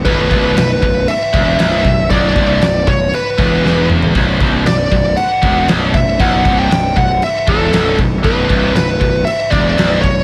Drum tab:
CC |x-x-x-x-x-x-x-x-|x-x-x-x-x-x-----|x-x-x-x-x-x-x-x-|x-x-x-x-x-x-x-x-|
SD |----o-------o---|----o-------o---|----o-------o---|----o-------o---|
T2 |----------------|--------------o-|----------------|----------------|
FT |----------------|---------------o|----------------|----------------|
BD |o-o---o---o---o-|o-o---o---o-----|o-o---o---o---o-|o-o---o---o---o-|

CC |x-x-x-x-x-x-x-x-|
SD |----o-------o---|
T2 |----------------|
FT |----------------|
BD |o-o---o---o---o-|